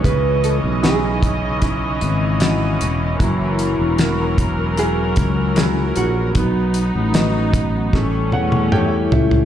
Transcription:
0.00 3.15 C#3 medium
0.00 3.16 C#3 medium
0.00 6.31 E3 medium
0.00 6.32 C#4 medium
0.04 0.59 C#2 medium
0.04 0.44 B4 medium
0.04 3.17 D#5 medium
0.04 kick medium
0.04 closed hi-hat medium
0.44 0.55 A4 medium
0.44 closed hi-hat medium
0.64 1.98 B1 medium
0.82 1.59 C#4 soft
0.82 1.59 D#4 soft
0.82 1.60 E4 soft
0.82 2.41 G#4 medium
0.82 snare medium
0.82 closed hi-hat medium
1.23 kick medium
1.23 closed hi-hat medium
1.62 2.38 C#4 soft
1.62 2.38 D#4 soft
1.62 2.39 E4 soft
1.62 kick medium
1.62 closed hi-hat medium
2.01 2.77 G#1 medium
2.01 closed hi-hat medium
2.40 3.17 C#4 soft
2.40 3.18 D#4 soft
2.40 3.18 E4 soft
2.40 3.23 F#4 medium
2.40 snare medium
2.40 closed hi-hat medium
2.81 3.18 E1 medium
2.81 closed hi-hat medium
3.19 3.75 F#1 medium
3.19 6.31 F#3 medium
3.19 7.89 F#3 medium
3.19 4.83 E4 medium
3.19 6.32 A#4 medium
3.19 kick medium
3.19 closed hi-hat medium
3.59 closed hi-hat medium
3.79 5.13 E1 medium
3.98 4.75 E4 soft
3.98 4.75 F#4 soft
3.98 4.76 A#4 soft
3.98 snare medium
3.98 closed hi-hat medium
4.38 kick medium
4.38 closed hi-hat medium
4.77 5.54 E4 soft
4.77 5.54 F#4 soft
4.77 5.53 G#4 medium
4.77 5.55 A#4 soft
4.77 closed hi-hat medium
5.16 5.92 C#2 medium
5.16 kick medium
5.16 closed hi-hat medium
5.55 6.33 E4 soft
5.55 6.33 F#4 soft
5.55 5.97 G#4 medium
5.55 6.33 A#4 soft
5.55 snare medium
5.55 closed hi-hat medium
5.96 6.33 A#1 medium
5.96 8.69 F#4 medium
5.96 closed hi-hat medium
6.35 6.91 B1 medium
6.35 7.92 B3 medium
6.35 7.90 B3 medium
6.35 7.93 D#4 medium
6.35 kick medium
6.35 closed hi-hat medium
6.74 closed hi-hat medium
6.95 7.90 A1 medium
7.14 7.91 F#4 soft
7.14 7.91 B4 soft
7.14 7.91 D#5 soft
7.14 snare medium
7.14 closed hi-hat medium
7.54 kick medium
7.54 closed hi-hat medium
7.93 8.30 A1 medium
7.93 9.45 G3 medium
7.93 9.45 A3 medium
7.93 9.45 C#4 medium
7.93 kick medium
7.93 snare soft
8.32 9.08 E2 medium
8.32 8.70 F#5 medium
8.32 high tom soft
8.52 high tom soft
8.72 9.45 E4 medium
8.72 9.45 G4 soft
8.72 9.45 A4 soft
8.72 9.45 C#5 soft
8.72 9.09 G5 medium
8.72 mid tom medium
9.12 9.45 C#2 medium
9.12 9.45 E5 soft
9.12 floor tom medium
9.31 floor tom medium

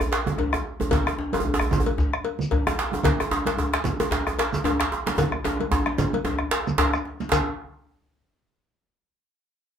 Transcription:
0.00 djembe tone medium
0.00 djembe bass medium
0.12 cowbell soft
0.12 djembe slap medium
0.26 high conga medium
0.26 djembe tone medium
0.26 low conga medium
0.38 bombo rim soft
0.38 bombo low medium
0.38 cowbell soft
0.38 djembe slap medium
0.38 high conga soft
0.38 djembe tone medium
0.38 djembe bass medium
0.53 bombo rim medium
0.53 djembe tone medium
0.80 djembe slap medium
0.80 high conga medium
0.80 djembe tone medium
0.80 djembe bass medium
0.91 bombo low loud
0.91 cowbell medium
0.91 djembe slap medium
0.91 low conga medium
0.91 djembe bass medium
0.91 shekere medium
1.06 bombo rim medium
1.06 djembe slap soft
1.06 high conga soft
1.06 djembe tone medium
1.18 djembe slap medium
1.18 djembe tone medium
1.33 cowbell medium
1.33 high conga medium
1.33 djembe tone loud
1.40 djembe bass medium
1.45 bombo low loud
1.45 djembe bass medium
1.54 djembe tone loud
1.60 bombo rim loud
1.60 djembe slap medium
1.60 djembe bass medium
1.71 djembe tone medium
1.71 djembe tone loud
1.71 low conga medium
1.71 shekere medium
1.80 djembe bass medium
1.86 cowbell medium
1.86 djembe slap soft
1.86 high conga medium
1.98 bombo low loud
1.98 djembe slap medium
1.98 djembe bass medium
1.98 shekere soft
2.13 bombo rim medium
2.13 djembe tone medium
2.24 cowbell medium
2.24 high conga soft
2.39 high conga medium
2.39 low conga medium
2.39 shekere soft
2.50 bombo rim soft
2.50 bombo low loud
2.50 cowbell medium
2.50 djembe slap medium
2.50 high conga soft
2.50 djembe tone medium
2.50 djembe bass medium
2.67 bombo rim medium
2.67 djembe tone loud
2.79 djembe slap medium
2.92 djembe slap medium
2.92 high conga medium
2.92 djembe tone medium
3.03 bombo low loud
3.03 cowbell medium
3.03 djembe slap medium
3.03 low conga medium
3.03 djembe bass medium
3.03 shekere medium
3.19 bombo rim medium
3.19 djembe slap soft
3.19 high conga soft
3.19 djembe tone medium
3.31 djembe slap medium
3.31 djembe tone medium
3.31 djembe tone loud
3.46 cowbell medium
3.46 djembe slap soft
3.46 djembe slap medium
3.46 high conga medium
3.57 bombo low medium
3.57 djembe tone medium
3.57 djembe bass medium
3.73 bombo rim loud
3.73 djembe slap medium
3.84 bombo rim soft
3.84 djembe tone medium
3.84 low conga medium
3.84 shekere medium
3.99 cowbell medium
3.99 djembe slap soft
3.99 high conga medium
3.99 djembe tone loud
4.11 bombo low medium
4.11 djembe slap medium
4.11 djembe bass medium
4.11 shekere soft
4.26 bombo rim medium
4.26 djembe tone medium
4.38 cowbell medium
4.38 djembe slap medium
4.38 high conga soft
4.53 high conga medium
4.53 djembe tone medium
4.53 low conga medium
4.53 shekere medium
4.64 bombo rim soft
4.64 bombo low medium
4.64 cowbell soft
4.64 djembe slap medium
4.64 djembe tone medium
4.64 high conga soft
4.64 djembe tone loud
4.64 djembe bass medium
4.80 bombo rim medium
4.80 djembe slap medium
4.92 djembe tone medium
5.06 djembe slap medium
5.06 djembe tone medium
5.06 high conga medium
5.18 bombo rim soft
5.18 bombo low loud
5.18 cowbell medium
5.18 djembe slap soft
5.18 djembe tone loud
5.18 high conga soft
5.18 djembe bass medium
5.18 low conga medium
5.18 shekere medium
5.32 bombo rim medium
5.32 high conga soft
5.44 djembe slap medium
5.44 djembe tone medium
5.44 djembe tone loud
5.59 bombo rim soft
5.59 cowbell soft
5.59 high conga medium
5.71 bombo low medium
5.71 djembe tone loud
5.71 djembe bass medium
5.86 bombo rim medium
5.86 djembe slap medium
5.86 high conga soft
5.98 bombo rim soft
5.98 djembe tone medium
5.98 djembe tone loud
5.98 low conga medium
5.98 shekere medium
6.13 cowbell medium
6.13 high conga medium
6.24 bombo low medium
6.24 djembe slap medium
6.24 djembe tone loud
6.24 djembe bass medium
6.39 bombo rim medium
6.39 djembe slap soft
6.39 djembe tone medium
6.51 cowbell soft
6.51 djembe slap loud
6.51 shekere soft
6.66 bombo rim soft
6.66 djembe slap soft
6.66 high conga medium
6.66 low conga medium
6.66 shekere soft
6.78 bombo low medium
6.78 cowbell medium
6.78 djembe slap loud
6.78 djembe slap medium
6.78 djembe tone medium
6.78 djembe bass medium
6.93 bombo rim medium
6.93 high conga soft
6.93 djembe bass soft
6.93 shekere soft
7.05 djembe slap soft
7.20 djembe slap medium
7.20 high conga medium
7.20 shekere soft
7.32 bombo low medium
7.32 cowbell medium
7.32 djembe slap loud
7.32 djembe bass medium
7.32 low conga loud
7.32 shekere medium

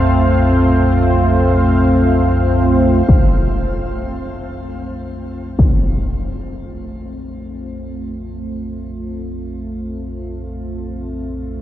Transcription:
0.00 3.08 A#1 medium
0.00 3.08 F2 medium
0.00 11.62 A3 medium
0.00 11.62 C4 medium
0.00 11.62 F4 medium
0.00 11.62 C5 medium
0.00 3.10 F5 medium
3.09 11.62 A#1 medium
3.09 11.62 F2 medium
3.09 impact medium
5.59 impact soft

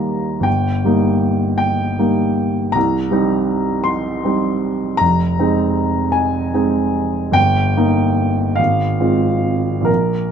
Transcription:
0.00 0.49 D#2 soft
0.00 0.49 G3 soft
0.00 0.48 A#3 soft
0.00 0.49 D#4 soft
0.00 0.45 A#5 medium
0.00 0.49 C6 medium
0.40 0.81 G1 soft
0.40 1.56 G5 medium
0.85 1.95 G3 soft
0.85 1.96 A#3 soft
0.85 1.96 D#4 soft
1.58 2.73 G5 medium
1.99 2.71 G3 soft
1.99 2.71 A#3 soft
1.99 2.71 D#4 soft
2.72 3.11 C2 soft
2.72 3.86 A#5 medium
3.11 4.20 G3 soft
3.11 4.20 C4 soft
3.11 4.21 D#4 soft
3.84 4.99 C6 medium
4.25 4.97 G3 soft
4.25 4.97 C4 soft
4.25 4.97 D#4 soft
4.97 5.38 F1 soft
4.97 6.13 A#5 medium
5.39 6.50 G#3 soft
5.39 6.50 C4 soft
5.39 6.50 D#4 soft
6.12 6.53 G#5 medium
6.54 7.32 G#3 soft
6.54 7.32 C4 soft
6.54 7.32 D#4 soft
7.31 7.73 G1 medium
7.31 8.57 G5 medium
7.77 8.54 A#3 soft
7.77 8.54 D#4 soft
8.56 8.99 G#1 soft
8.56 9.87 F5 medium
9.00 9.84 G#3 soft
9.00 9.84 C4 soft
9.00 9.84 F4 soft
9.81 10.27 A#1 soft
9.81 10.32 A#4 medium

